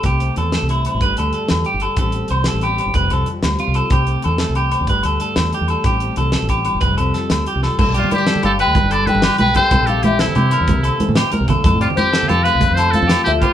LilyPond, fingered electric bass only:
\new Staff \with { instrumentName = "Fingered electric bass" } { \clef bass \time 12/8 \key c \major \tempo 4. = 124 c,4 e,8. c,4 a,,16 g,,8 d,8 r8 e,8 r16 g,,8 r16 | a,,4 c,8. a,,4 g,,16 f,,8 c,8 r8 d,8 r16 c,8 r16 | c,4 e,8. c,4 d,16 g,,8 d,8 r8 e,8 r16 e,8 r16 | a,,4 c,8. a,,4 g,,16 f,,8 c,8 r8 d,8 r16 c,8 r16 |
g,,16 b,,8 r4 r16 g,,8. d,16 r16 g,,4 g,,8 r16 b,,8 r8 | c,16 bes,,4.~ bes,,16 c8. e,8 c,8 r8 a,8 r8 c,8 r16 | f,16 a,8 r4 r16 f,8. c,16 r16 f,4 f,8 r16 d,8 r8 | }